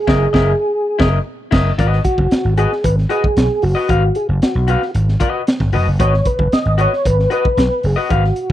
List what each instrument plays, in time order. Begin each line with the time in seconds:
Already playing: tonewheel organ G#4
0.07 slap bass F#1, clean electric guitar E4 A#4 D#5, kick, snare
0.33 slap bass F#1, clean electric guitar E4 A#4 D#5, kick, snare
0.99 slap bass F#1, clean electric guitar E4 A#4 D#5, kick, snare
1.51 slap bass F#1, clean electric guitar E4 A#4 D#5, kick, snare, crash
1.78 slap bass G#1, clean electric guitar F#4 B4 D#5, kick, closed hi-hat
1.93 snare
2.04 tonewheel organ F#4, kick, closed hi-hat
2.18 slap bass F#1, kick
2.31 muted slap bass stroke, snare, closed hi-hat
2.45 slap bass G#1
2.57 clean electric guitar F#4 B4 D#5, tonewheel organ G#4, closed hi-hat
2.72 snare
2.84 slap bass G#1, tonewheel organ B4, kick, closed hi-hat
2.98 snare
3.09 clean electric guitar F#4 B4 D#5, tonewheel organ G#4, closed hi-hat
3.24 kick
3.37 slap bass B1, snare, closed hi-hat
3.62 slap bass F#1, tonewheel organ F#4, open hi-hat
3.75 clean electric guitar F#4 B4 D#5
3.88 slap bass G#1, clean electric guitar F#4 B4 F5, kick, closed hi-hat
4.15 tonewheel organ G#4, closed hi-hat
4.29 slap bass F#1
4.42 tonewheel organ F#4, muted slap bass stroke, snare, closed hi-hat
4.55 slap bass B1
4.68 clean electric guitar F#4 B4 F5, closed hi-hat
4.82 snare
4.95 slap bass G#1, closed hi-hat
5.08 snare
5.20 clean electric guitar F#4 B4 D#5, kick, closed hi-hat
5.47 snare, closed hi-hat
5.60 slap bass G#1, kick, snare
5.72 slap bass F1, clean electric guitar F#4 B4 D#5, open hi-hat
5.87 slap bass F#1
5.99 slap bass G#1, clean electric guitar F#4 B4 D#5, tonewheel organ C#5, kick, closed hi-hat
6.14 snare
6.25 tonewheel organ B4, kick, closed hi-hat
6.39 slap bass F#1, kick
6.52 tonewheel organ D#5, muted slap bass stroke, snare, closed hi-hat
6.66 slap bass G#1
6.78 clean electric guitar F#4 B4 D#5, tonewheel organ C#5, closed hi-hat
6.93 snare
7.05 slap bass G#1, tonewheel organ B4, kick, closed hi-hat
7.19 snare
7.30 clean electric guitar F#4 B4 D#5, tonewheel organ B4, closed hi-hat
7.45 kick
7.57 slap bass B1, snare, closed hi-hat
7.83 slap bass F#1, tonewheel organ G#4, open hi-hat
7.96 clean electric guitar F#4 B4 D#5
8.09 slap bass G#1, clean electric guitar F#4 B4 F5, tonewheel organ F#4, kick, closed hi-hat
8.24 snare
8.36 closed hi-hat